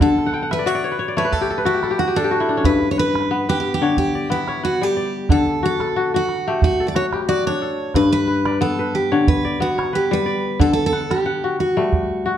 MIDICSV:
0, 0, Header, 1, 4, 480
1, 0, Start_track
1, 0, Time_signature, 4, 2, 24, 8
1, 0, Tempo, 662252
1, 8969, End_track
2, 0, Start_track
2, 0, Title_t, "Kora"
2, 0, Program_c, 0, 46
2, 0, Note_on_c, 0, 59, 67
2, 0, Note_on_c, 0, 71, 62
2, 0, Note_on_c, 0, 74, 57
2, 7, Note_on_c, 0, 50, 76
2, 191, Note_on_c, 0, 78, 68
2, 244, Note_on_c, 0, 79, 63
2, 306, Note_off_c, 0, 78, 0
2, 308, Note_on_c, 0, 78, 60
2, 370, Note_on_c, 0, 76, 71
2, 421, Note_off_c, 0, 71, 0
2, 424, Note_off_c, 0, 74, 0
2, 427, Note_on_c, 0, 74, 61
2, 479, Note_off_c, 0, 76, 0
2, 479, Note_on_c, 0, 66, 79
2, 482, Note_on_c, 0, 76, 72
2, 523, Note_off_c, 0, 79, 0
2, 540, Note_off_c, 0, 74, 0
2, 543, Note_on_c, 0, 74, 69
2, 609, Note_on_c, 0, 73, 66
2, 638, Note_off_c, 0, 59, 0
2, 664, Note_on_c, 0, 71, 62
2, 715, Note_off_c, 0, 73, 0
2, 718, Note_on_c, 0, 73, 66
2, 761, Note_off_c, 0, 74, 0
2, 785, Note_on_c, 0, 74, 65
2, 844, Note_off_c, 0, 73, 0
2, 846, Note_on_c, 0, 57, 76
2, 847, Note_on_c, 0, 73, 69
2, 902, Note_off_c, 0, 71, 0
2, 905, Note_on_c, 0, 71, 68
2, 958, Note_on_c, 0, 69, 63
2, 1008, Note_off_c, 0, 78, 0
2, 1024, Note_on_c, 0, 67, 63
2, 1067, Note_off_c, 0, 66, 0
2, 1088, Note_off_c, 0, 69, 0
2, 1090, Note_on_c, 0, 69, 61
2, 1141, Note_off_c, 0, 71, 0
2, 1144, Note_on_c, 0, 71, 60
2, 1196, Note_off_c, 0, 69, 0
2, 1197, Note_on_c, 0, 66, 70
2, 1199, Note_on_c, 0, 69, 61
2, 1231, Note_off_c, 0, 76, 0
2, 1241, Note_off_c, 0, 67, 0
2, 1264, Note_on_c, 0, 67, 61
2, 1327, Note_off_c, 0, 69, 0
2, 1330, Note_on_c, 0, 69, 66
2, 1379, Note_off_c, 0, 67, 0
2, 1382, Note_on_c, 0, 67, 66
2, 1438, Note_off_c, 0, 66, 0
2, 1441, Note_on_c, 0, 66, 68
2, 1502, Note_off_c, 0, 67, 0
2, 1505, Note_on_c, 0, 67, 65
2, 1566, Note_off_c, 0, 69, 0
2, 1568, Note_on_c, 0, 62, 78
2, 1569, Note_on_c, 0, 69, 65
2, 1588, Note_off_c, 0, 74, 0
2, 1611, Note_off_c, 0, 73, 0
2, 1621, Note_off_c, 0, 67, 0
2, 1624, Note_on_c, 0, 67, 70
2, 1668, Note_off_c, 0, 66, 0
2, 1675, Note_on_c, 0, 66, 64
2, 1703, Note_off_c, 0, 50, 0
2, 1741, Note_on_c, 0, 64, 61
2, 1801, Note_off_c, 0, 62, 0
2, 1804, Note_on_c, 0, 62, 63
2, 1864, Note_on_c, 0, 61, 61
2, 1917, Note_on_c, 0, 43, 68
2, 1960, Note_off_c, 0, 66, 0
2, 2035, Note_off_c, 0, 71, 0
2, 2158, Note_on_c, 0, 71, 62
2, 2293, Note_off_c, 0, 57, 0
2, 2397, Note_on_c, 0, 59, 73
2, 2524, Note_off_c, 0, 69, 0
2, 2525, Note_off_c, 0, 71, 0
2, 2528, Note_on_c, 0, 71, 60
2, 2648, Note_off_c, 0, 67, 0
2, 2765, Note_on_c, 0, 50, 71
2, 2767, Note_on_c, 0, 73, 63
2, 2809, Note_off_c, 0, 61, 0
2, 2811, Note_off_c, 0, 62, 0
2, 2877, Note_off_c, 0, 64, 0
2, 3008, Note_on_c, 0, 74, 54
2, 3112, Note_off_c, 0, 59, 0
2, 3115, Note_on_c, 0, 59, 75
2, 3245, Note_off_c, 0, 73, 0
2, 3248, Note_on_c, 0, 73, 55
2, 3355, Note_off_c, 0, 71, 0
2, 3358, Note_on_c, 0, 71, 63
2, 3489, Note_on_c, 0, 55, 76
2, 3596, Note_off_c, 0, 74, 0
2, 3599, Note_on_c, 0, 74, 61
2, 3613, Note_off_c, 0, 43, 0
2, 3643, Note_off_c, 0, 73, 0
2, 3832, Note_off_c, 0, 50, 0
2, 3840, Note_on_c, 0, 50, 71
2, 3872, Note_off_c, 0, 55, 0
2, 4079, Note_on_c, 0, 66, 60
2, 4211, Note_on_c, 0, 69, 61
2, 4249, Note_off_c, 0, 71, 0
2, 4319, Note_off_c, 0, 66, 0
2, 4322, Note_on_c, 0, 66, 73
2, 4402, Note_off_c, 0, 74, 0
2, 4448, Note_off_c, 0, 66, 0
2, 4451, Note_on_c, 0, 66, 58
2, 4466, Note_off_c, 0, 59, 0
2, 4693, Note_on_c, 0, 67, 62
2, 4694, Note_on_c, 0, 57, 78
2, 4927, Note_off_c, 0, 69, 0
2, 4930, Note_on_c, 0, 69, 60
2, 5039, Note_off_c, 0, 66, 0
2, 5042, Note_on_c, 0, 66, 72
2, 5085, Note_off_c, 0, 67, 0
2, 5171, Note_on_c, 0, 67, 58
2, 5278, Note_off_c, 0, 66, 0
2, 5281, Note_on_c, 0, 66, 71
2, 5412, Note_on_c, 0, 62, 79
2, 5518, Note_off_c, 0, 69, 0
2, 5521, Note_on_c, 0, 69, 59
2, 5537, Note_off_c, 0, 50, 0
2, 5763, Note_on_c, 0, 43, 74
2, 5807, Note_off_c, 0, 66, 0
2, 5998, Note_on_c, 0, 71, 58
2, 6128, Note_on_c, 0, 74, 61
2, 6141, Note_off_c, 0, 57, 0
2, 6195, Note_off_c, 0, 67, 0
2, 6239, Note_on_c, 0, 59, 80
2, 6368, Note_off_c, 0, 71, 0
2, 6371, Note_on_c, 0, 71, 56
2, 6476, Note_off_c, 0, 69, 0
2, 6608, Note_on_c, 0, 73, 65
2, 6609, Note_on_c, 0, 50, 71
2, 6651, Note_off_c, 0, 62, 0
2, 6651, Note_off_c, 0, 74, 0
2, 6847, Note_on_c, 0, 74, 65
2, 6957, Note_off_c, 0, 59, 0
2, 6960, Note_on_c, 0, 59, 71
2, 7085, Note_off_c, 0, 73, 0
2, 7088, Note_on_c, 0, 73, 63
2, 7194, Note_off_c, 0, 71, 0
2, 7197, Note_on_c, 0, 71, 63
2, 7329, Note_on_c, 0, 55, 79
2, 7433, Note_off_c, 0, 74, 0
2, 7435, Note_on_c, 0, 74, 59
2, 7459, Note_off_c, 0, 43, 0
2, 7479, Note_off_c, 0, 73, 0
2, 7671, Note_off_c, 0, 50, 0
2, 7679, Note_on_c, 0, 50, 74
2, 7716, Note_off_c, 0, 55, 0
2, 7919, Note_on_c, 0, 78, 57
2, 8048, Note_on_c, 0, 69, 60
2, 8088, Note_off_c, 0, 71, 0
2, 8157, Note_off_c, 0, 78, 0
2, 8160, Note_on_c, 0, 78, 77
2, 8239, Note_off_c, 0, 74, 0
2, 8291, Note_on_c, 0, 66, 60
2, 8310, Note_off_c, 0, 59, 0
2, 8529, Note_on_c, 0, 55, 58
2, 8530, Note_on_c, 0, 57, 73
2, 8573, Note_off_c, 0, 78, 0
2, 8880, Note_off_c, 0, 66, 0
2, 8883, Note_on_c, 0, 66, 67
2, 8969, Note_off_c, 0, 50, 0
2, 8969, Note_off_c, 0, 55, 0
2, 8969, Note_off_c, 0, 57, 0
2, 8969, Note_off_c, 0, 66, 0
2, 8969, Note_off_c, 0, 69, 0
2, 8969, End_track
3, 0, Start_track
3, 0, Title_t, "Steel-string acoustic guitar"
3, 0, Program_c, 1, 25
3, 16, Note_on_c, 1, 69, 85
3, 352, Note_off_c, 1, 69, 0
3, 382, Note_on_c, 1, 71, 84
3, 485, Note_off_c, 1, 71, 0
3, 485, Note_on_c, 1, 73, 89
3, 851, Note_off_c, 1, 73, 0
3, 855, Note_on_c, 1, 71, 77
3, 960, Note_off_c, 1, 71, 0
3, 960, Note_on_c, 1, 69, 81
3, 1199, Note_off_c, 1, 69, 0
3, 1205, Note_on_c, 1, 64, 76
3, 1443, Note_on_c, 1, 66, 80
3, 1448, Note_off_c, 1, 64, 0
3, 1567, Note_on_c, 1, 69, 87
3, 1573, Note_off_c, 1, 66, 0
3, 1920, Note_off_c, 1, 69, 0
3, 1923, Note_on_c, 1, 71, 95
3, 2107, Note_off_c, 1, 71, 0
3, 2110, Note_on_c, 1, 73, 69
3, 2156, Note_off_c, 1, 73, 0
3, 2170, Note_on_c, 1, 71, 87
3, 2529, Note_off_c, 1, 71, 0
3, 2532, Note_on_c, 1, 67, 86
3, 2600, Note_off_c, 1, 67, 0
3, 2608, Note_on_c, 1, 67, 73
3, 2701, Note_off_c, 1, 67, 0
3, 2711, Note_on_c, 1, 67, 78
3, 2876, Note_off_c, 1, 67, 0
3, 2885, Note_on_c, 1, 67, 87
3, 3125, Note_off_c, 1, 67, 0
3, 3128, Note_on_c, 1, 64, 82
3, 3365, Note_off_c, 1, 64, 0
3, 3367, Note_on_c, 1, 66, 81
3, 3501, Note_off_c, 1, 66, 0
3, 3501, Note_on_c, 1, 67, 86
3, 3850, Note_off_c, 1, 67, 0
3, 3853, Note_on_c, 1, 69, 88
3, 4090, Note_off_c, 1, 69, 0
3, 4099, Note_on_c, 1, 69, 94
3, 4432, Note_off_c, 1, 69, 0
3, 4465, Note_on_c, 1, 66, 83
3, 4804, Note_off_c, 1, 66, 0
3, 4812, Note_on_c, 1, 66, 83
3, 4985, Note_off_c, 1, 66, 0
3, 4988, Note_on_c, 1, 74, 70
3, 5036, Note_off_c, 1, 74, 0
3, 5045, Note_on_c, 1, 73, 92
3, 5109, Note_off_c, 1, 73, 0
3, 5281, Note_on_c, 1, 74, 99
3, 5411, Note_off_c, 1, 74, 0
3, 5414, Note_on_c, 1, 73, 95
3, 5766, Note_off_c, 1, 73, 0
3, 5769, Note_on_c, 1, 71, 96
3, 5880, Note_off_c, 1, 71, 0
3, 5889, Note_on_c, 1, 71, 85
3, 6241, Note_off_c, 1, 71, 0
3, 6244, Note_on_c, 1, 69, 82
3, 6485, Note_on_c, 1, 67, 81
3, 6488, Note_off_c, 1, 69, 0
3, 6728, Note_on_c, 1, 71, 90
3, 6729, Note_off_c, 1, 67, 0
3, 6947, Note_off_c, 1, 71, 0
3, 6971, Note_on_c, 1, 66, 82
3, 7189, Note_off_c, 1, 66, 0
3, 7214, Note_on_c, 1, 67, 85
3, 7340, Note_off_c, 1, 67, 0
3, 7344, Note_on_c, 1, 71, 92
3, 7689, Note_off_c, 1, 71, 0
3, 7692, Note_on_c, 1, 69, 92
3, 7771, Note_off_c, 1, 69, 0
3, 7779, Note_on_c, 1, 69, 83
3, 7864, Note_off_c, 1, 69, 0
3, 7873, Note_on_c, 1, 69, 92
3, 8042, Note_off_c, 1, 69, 0
3, 8053, Note_on_c, 1, 67, 77
3, 8378, Note_off_c, 1, 67, 0
3, 8408, Note_on_c, 1, 66, 73
3, 8969, Note_off_c, 1, 66, 0
3, 8969, End_track
4, 0, Start_track
4, 0, Title_t, "Calabash"
4, 3, Note_on_c, 9, 36, 54
4, 3, Note_on_c, 9, 38, 17
4, 76, Note_off_c, 9, 36, 0
4, 76, Note_off_c, 9, 38, 0
4, 134, Note_on_c, 9, 38, 18
4, 206, Note_off_c, 9, 38, 0
4, 240, Note_on_c, 9, 38, 17
4, 313, Note_off_c, 9, 38, 0
4, 371, Note_on_c, 9, 38, 46
4, 443, Note_off_c, 9, 38, 0
4, 960, Note_on_c, 9, 36, 50
4, 960, Note_on_c, 9, 38, 16
4, 1033, Note_off_c, 9, 36, 0
4, 1033, Note_off_c, 9, 38, 0
4, 1326, Note_on_c, 9, 38, 38
4, 1399, Note_off_c, 9, 38, 0
4, 1438, Note_on_c, 9, 38, 17
4, 1510, Note_off_c, 9, 38, 0
4, 1676, Note_on_c, 9, 38, 18
4, 1748, Note_off_c, 9, 38, 0
4, 1915, Note_on_c, 9, 36, 49
4, 1915, Note_on_c, 9, 38, 16
4, 1987, Note_off_c, 9, 36, 0
4, 1987, Note_off_c, 9, 38, 0
4, 2286, Note_on_c, 9, 38, 43
4, 2359, Note_off_c, 9, 38, 0
4, 2636, Note_on_c, 9, 38, 18
4, 2708, Note_off_c, 9, 38, 0
4, 2877, Note_on_c, 9, 36, 51
4, 2949, Note_off_c, 9, 36, 0
4, 3117, Note_on_c, 9, 38, 19
4, 3189, Note_off_c, 9, 38, 0
4, 3243, Note_on_c, 9, 38, 43
4, 3316, Note_off_c, 9, 38, 0
4, 3835, Note_on_c, 9, 36, 58
4, 3835, Note_on_c, 9, 38, 17
4, 3908, Note_off_c, 9, 36, 0
4, 3908, Note_off_c, 9, 38, 0
4, 4204, Note_on_c, 9, 38, 50
4, 4277, Note_off_c, 9, 38, 0
4, 4557, Note_on_c, 9, 38, 19
4, 4630, Note_off_c, 9, 38, 0
4, 4797, Note_on_c, 9, 36, 53
4, 4870, Note_off_c, 9, 36, 0
4, 5037, Note_on_c, 9, 38, 18
4, 5109, Note_off_c, 9, 38, 0
4, 5165, Note_on_c, 9, 38, 49
4, 5238, Note_off_c, 9, 38, 0
4, 5758, Note_on_c, 9, 36, 56
4, 5758, Note_on_c, 9, 38, 19
4, 5830, Note_off_c, 9, 36, 0
4, 5830, Note_off_c, 9, 38, 0
4, 6128, Note_on_c, 9, 38, 51
4, 6201, Note_off_c, 9, 38, 0
4, 6482, Note_on_c, 9, 38, 18
4, 6555, Note_off_c, 9, 38, 0
4, 6722, Note_on_c, 9, 36, 61
4, 6794, Note_off_c, 9, 36, 0
4, 6964, Note_on_c, 9, 38, 21
4, 7036, Note_off_c, 9, 38, 0
4, 7095, Note_on_c, 9, 38, 48
4, 7167, Note_off_c, 9, 38, 0
4, 7681, Note_on_c, 9, 36, 58
4, 7753, Note_off_c, 9, 36, 0
4, 7922, Note_on_c, 9, 38, 22
4, 7995, Note_off_c, 9, 38, 0
4, 8052, Note_on_c, 9, 38, 55
4, 8125, Note_off_c, 9, 38, 0
4, 8402, Note_on_c, 9, 38, 21
4, 8475, Note_off_c, 9, 38, 0
4, 8536, Note_on_c, 9, 38, 21
4, 8608, Note_off_c, 9, 38, 0
4, 8643, Note_on_c, 9, 36, 64
4, 8716, Note_off_c, 9, 36, 0
4, 8969, End_track
0, 0, End_of_file